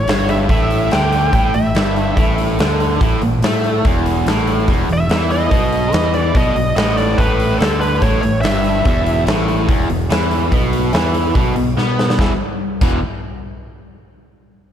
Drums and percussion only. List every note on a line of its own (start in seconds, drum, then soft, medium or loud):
0.08 snare loud
0.08 open hi-hat medium
0.29 open hi-hat medium
0.49 kick loud
0.49 open hi-hat medium
0.71 open hi-hat medium
0.91 snare loud
0.91 open hi-hat medium
1.12 open hi-hat medium
1.33 kick medium
1.33 open hi-hat medium
1.54 open hi-hat medium
1.75 snare loud
1.75 open hi-hat medium
1.96 open hi-hat soft
2.17 kick loud
2.17 open hi-hat medium
2.38 open hi-hat medium
2.59 snare loud
2.59 open hi-hat medium
2.80 open hi-hat medium
3.01 kick loud
3.01 open hi-hat medium
3.22 open hi-hat medium
3.43 snare loud
3.43 open hi-hat medium
3.64 open hi-hat medium
3.85 kick loud
3.85 open hi-hat medium
4.06 open hi-hat medium
4.26 snare loud
4.26 open hi-hat medium
4.47 open hi-hat medium
4.68 kick medium
4.68 open hi-hat medium
4.89 open hi-hat soft
5.09 snare loud
5.09 open hi-hat medium
5.30 open hi-hat medium
5.51 kick medium
5.51 open hi-hat medium
5.72 open hi-hat medium
5.93 snare loud
5.93 open hi-hat medium
6.14 open hi-hat medium
6.35 kick loud
6.35 open hi-hat medium
6.56 open hi-hat medium
6.76 snare loud
6.76 open hi-hat medium
6.97 open hi-hat medium
7.18 kick loud
7.18 open hi-hat medium
7.40 open hi-hat medium
7.60 snare loud
7.60 open hi-hat medium
7.81 open hi-hat medium
8.02 kick medium
8.02 open hi-hat medium
8.23 open hi-hat medium
8.43 snare loud
8.43 open hi-hat medium
8.64 open hi-hat medium
8.85 kick loud
8.85 open hi-hat medium
9.06 open hi-hat medium
9.27 snare loud
9.27 open hi-hat medium
9.48 open hi-hat medium
9.69 kick loud
9.69 open hi-hat medium
9.90 open hi-hat medium
10.10 snare loud
10.10 open hi-hat medium
10.31 open hi-hat medium
10.52 kick loud
10.52 open hi-hat medium
10.73 open hi-hat medium
10.93 snare loud
10.93 open hi-hat medium
11.14 open hi-hat medium
11.35 kick loud
11.35 open hi-hat medium
11.56 open hi-hat medium
11.78 snare medium
11.99 snare medium
12.10 snare medium
12.19 kick loud
12.19 snare medium
12.81 kick loud
12.81 crash medium